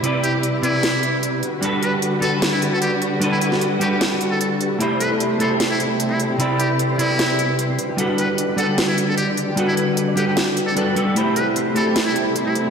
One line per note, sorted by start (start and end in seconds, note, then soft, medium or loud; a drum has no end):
0.00 0.60 C3 medium
0.00 1.41 C3 medium
0.00 11.12 G3 medium
0.00 0.61 C4 medium
0.00 1.40 E4 medium
0.00 0.61 E4 medium
0.00 4.76 B4 medium
0.00 closed hi-hat medium
0.05 0.62 B4 medium
0.05 0.62 D5 medium
0.24 0.34 G4 medium
0.24 closed hi-hat medium
0.43 closed hi-hat medium
0.61 1.41 C3 medium
0.61 1.41 C4 medium
0.61 1.19 E4 medium
0.61 1.42 E4 medium
0.61 1.42 B4 medium
0.61 1.43 D5 medium
0.61 closed hi-hat medium
0.83 snare loud
0.83 closed hi-hat medium
1.03 closed hi-hat medium
1.23 closed hi-hat medium
1.43 4.77 D3 medium
1.43 4.77 F#4 medium
1.43 closed hi-hat medium
1.61 2.19 G3 medium
1.61 2.20 D4 medium
1.61 2.20 F#4 medium
1.61 2.21 A4 medium
1.61 2.21 B4 loud
1.61 closed hi-hat medium
1.82 1.93 B4 medium
1.82 closed hi-hat medium
2.02 closed hi-hat medium
2.20 3.18 G3 medium
2.20 3.19 D4 medium
2.20 3.19 F#4 medium
2.20 2.33 A4 medium
2.20 3.20 A4 medium
2.20 3.20 B4 medium
2.20 closed hi-hat medium
2.42 snare loud
2.42 closed hi-hat medium
2.52 2.62 E4 medium
2.62 closed hi-hat medium
2.73 2.80 A4 medium
2.82 2.92 G4 medium
2.82 closed hi-hat medium
3.02 closed hi-hat medium
3.19 3.78 G3 medium
3.19 3.78 D4 medium
3.19 3.79 F#4 medium
3.19 3.79 A4 medium
3.19 closed hi-hat medium
3.24 3.80 B4 loud
3.32 3.38 E4 medium
3.41 3.48 E4 medium
3.41 closed hi-hat medium
3.52 snare soft
3.61 closed hi-hat medium
3.79 4.77 G3 medium
3.79 4.78 D4 medium
3.79 4.78 F#4 medium
3.79 3.88 G4 medium
3.79 4.79 A4 medium
3.79 4.79 B4 medium
3.79 closed hi-hat medium
3.91 3.98 G4 medium
4.01 snare loud
4.01 closed hi-hat medium
4.21 closed hi-hat medium
4.31 4.37 A4 medium
4.41 4.47 A4 medium
4.41 closed hi-hat medium
4.61 closed hi-hat medium
4.78 7.76 C3 medium
4.78 5.37 A3 medium
4.78 6.38 A3 medium
4.78 5.37 E4 medium
4.78 5.60 E4 medium
4.78 7.76 E4 medium
4.78 5.38 G4 medium
4.78 5.38 B5 medium
4.78 closed hi-hat medium
4.82 5.39 C5 loud
4.91 5.20 C5 medium
5.00 5.11 A4 medium
5.00 5.11 B4 medium
5.00 closed hi-hat medium
5.11 5.40 A4 medium
5.20 5.30 C5 medium
5.20 closed hi-hat medium
5.31 5.70 C5 medium
5.38 6.36 A3 medium
5.38 6.37 E4 medium
5.38 6.37 G4 medium
5.38 5.50 A4 medium
5.38 5.79 A4 medium
5.38 6.38 C5 medium
5.38 6.38 B5 medium
5.38 closed hi-hat medium
5.51 6.29 G4 loud
5.60 6.39 E4 medium
5.60 snare loud
5.60 closed hi-hat medium
5.71 5.80 E4 medium
5.71 5.99 C5 medium
5.80 5.90 A4 medium
5.80 closed hi-hat medium
5.90 6.19 A4 medium
6.00 6.10 C5 medium
6.00 closed hi-hat medium
6.10 6.19 E4 medium
6.10 6.49 C5 loud
6.20 8.39 A4 medium
6.20 closed hi-hat medium
6.30 7.09 G4 loud
6.37 6.96 C3 medium
6.37 6.96 C4 medium
6.37 6.97 E4 medium
6.37 7.19 E4 medium
6.37 6.98 D5 loud
6.37 6.97 B5 medium
6.37 closed hi-hat medium
6.50 6.65 C5 medium
6.59 6.70 G4 medium
6.59 6.69 B4 medium
6.59 closed hi-hat medium
6.70 6.85 B4 medium
6.79 6.89 C5 medium
6.79 closed hi-hat medium
6.90 7.05 C5 medium
6.97 7.77 C3 medium
6.97 7.77 C4 medium
6.97 7.55 E4 medium
6.97 7.78 E4 medium
6.97 7.35 B4 medium
6.97 7.78 B5 medium
6.97 closed hi-hat medium
7.01 7.79 D5 medium
7.10 7.89 G4 loud
7.19 9.80 E4 medium
7.19 snare loud
7.19 closed hi-hat medium
7.29 7.45 C5 medium
7.39 7.49 B4 medium
7.39 closed hi-hat medium
7.49 7.65 B4 medium
7.59 7.69 C5 medium
7.59 closed hi-hat medium
7.69 7.85 C5 loud
7.79 11.13 D3 medium
7.79 8.18 B4 medium
7.79 closed hi-hat medium
7.89 8.04 G4 loud
7.96 8.55 G3 medium
7.96 8.55 D4 medium
7.96 8.74 F#4 medium
7.96 8.56 A4 medium
7.96 8.56 F#5 medium
7.96 closed hi-hat medium
8.00 8.57 B4 loud
8.09 8.38 D5 medium
8.18 8.29 B4 medium
8.18 8.28 B4 medium
8.18 closed hi-hat medium
8.29 8.58 B4 medium
8.38 8.48 D5 medium
8.38 closed hi-hat medium
8.49 8.88 D5 medium
8.56 9.54 G3 medium
8.56 9.55 D4 medium
8.56 8.68 A4 medium
8.56 9.56 A4 medium
8.56 8.98 B4 medium
8.56 9.55 F#5 medium
8.56 closed hi-hat medium
8.60 9.56 B4 medium
8.68 8.84 G4 loud
8.78 9.54 F#4 medium
8.78 snare loud
8.78 closed hi-hat medium
8.88 8.98 E4 medium
8.88 9.18 D5 medium
8.98 9.08 B4 medium
8.98 closed hi-hat medium
9.08 9.16 A4 medium
9.08 9.37 B4 medium
9.18 9.28 G4 medium
9.18 9.28 D5 medium
9.18 closed hi-hat medium
9.28 9.68 D5 loud
9.37 9.77 B4 medium
9.37 closed hi-hat medium
9.48 9.64 G4 medium
9.55 10.14 G3 medium
9.55 10.14 D4 medium
9.55 10.33 F#4 medium
9.55 10.15 A4 medium
9.55 10.15 F#5 medium
9.55 closed hi-hat medium
9.59 10.16 B4 loud
9.68 9.74 E4 medium
9.68 9.97 D5 medium
9.77 9.84 E4 medium
9.77 9.87 B4 medium
9.77 closed hi-hat medium
9.88 10.17 B4 medium
9.97 10.07 D5 medium
9.97 closed hi-hat medium
10.08 10.47 D5 loud
10.15 10.74 G3 medium
10.15 10.74 D4 medium
10.15 10.24 G4 medium
10.15 10.75 A4 medium
10.15 10.76 B4 medium
10.15 10.75 F#5 medium
10.15 closed hi-hat medium
10.27 10.43 G4 loud
10.27 10.34 G4 medium
10.37 10.63 F#4 medium
10.37 snare loud
10.37 closed hi-hat medium
10.47 10.67 D5 medium
10.57 11.13 G5 medium
10.57 closed hi-hat medium
10.67 10.73 A4 medium
10.67 12.52 D5 loud
10.76 10.94 G3 medium
10.76 10.94 D4 medium
10.76 10.94 F#4 medium
10.76 10.83 A4 medium
10.76 10.94 A4 medium
10.76 11.33 B4 loud
10.76 10.95 B4 loud
10.76 closed hi-hat medium
10.87 10.96 B5 medium
10.95 11.14 G3 medium
10.95 11.14 D4 medium
10.95 11.14 F#4 medium
10.95 11.14 A4 medium
10.95 11.15 B4 loud
10.95 11.33 B5 medium
10.95 closed hi-hat medium
11.07 11.92 F#5 medium
11.14 12.70 C3 medium
11.14 12.70 G3 medium
11.14 11.73 A3 medium
11.14 12.70 A3 medium
11.14 11.73 E4 medium
11.14 12.70 E4 medium
11.14 11.95 E4 medium
11.14 11.74 G4 medium
11.14 11.74 B5 medium
11.14 closed hi-hat medium
11.18 11.75 C5 loud
11.27 11.55 C5 medium
11.36 11.46 A4 medium
11.36 11.46 B4 medium
11.36 closed hi-hat medium
11.46 11.76 A4 medium
11.56 11.66 C5 medium
11.56 closed hi-hat medium
11.66 12.06 C5 medium
11.74 12.70 A3 medium
11.74 12.70 E4 medium
11.74 12.70 G4 medium
11.74 11.86 A4 medium
11.74 12.15 A4 medium
11.74 12.70 C5 medium
11.74 12.70 B5 medium
11.74 closed hi-hat medium
11.86 12.65 G4 loud
11.96 12.70 E4 medium
11.96 snare loud
11.96 closed hi-hat medium
12.06 12.16 E4 medium
12.06 12.35 C5 medium
12.16 12.26 A4 medium
12.16 closed hi-hat medium
12.26 12.55 A4 medium
12.36 12.46 C5 medium
12.36 closed hi-hat medium
12.46 12.55 E4 medium
12.46 12.70 C5 loud
12.55 12.70 A4 medium
12.55 closed hi-hat medium
12.66 12.70 G4 medium